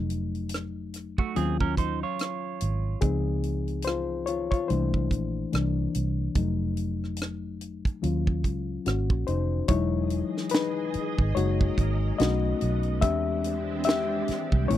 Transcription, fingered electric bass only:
0.00 1.15 F1 loud
1.37 2.02 D#2 medium
2.62 2.94 G#1 medium
3.03 4.48 C#2 loud
4.71 5.12 C2 medium
5.12 5.44 A#1 medium
5.54 5.86 C2 loud
5.96 6.28 C2 medium
6.36 7.81 F1 medium
8.04 8.45 D#2 medium
8.45 8.77 C#2 medium
8.87 9.11 G#1 loud
9.11 9.24 A#1 medium
9.28 9.61 F1 medium
9.70 10.21 E1 loud
10.95 muted fingered electric bass stroke soft
11.19 11.33 G#1 medium
11.37 11.69 F#1 loud
11.79 12.11 G#1 loud
12.20 12.53 B1 loud
12.62 13.03 B1 medium
13.03 14.24 E2 loud
14.29 muted fingered electric bass stroke soft
14.53 14.66 C2 loud
14.71 14.78 A1 loud

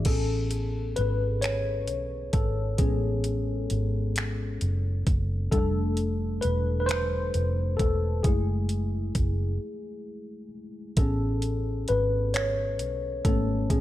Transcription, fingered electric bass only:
0.06 0.93 A1 medium
0.99 1.89 G#1 medium
1.89 2.30 B1 medium
2.34 2.75 G#1 medium
2.80 3.66 A1 medium
3.71 4.57 G#1 medium
4.62 5.03 F#1 medium
5.07 5.48 F#1 medium
5.53 6.39 F1 medium
6.45 7.31 E1 medium
7.35 7.76 F1 medium
7.80 8.21 E1 medium
8.25 9.12 F#1 medium
9.16 9.57 F#1 medium
10.98 11.84 A1 medium
11.90 12.81 G#1 medium
12.81 13.21 B1 medium
13.26 13.66 G#1 medium
13.71 13.81 A1 medium

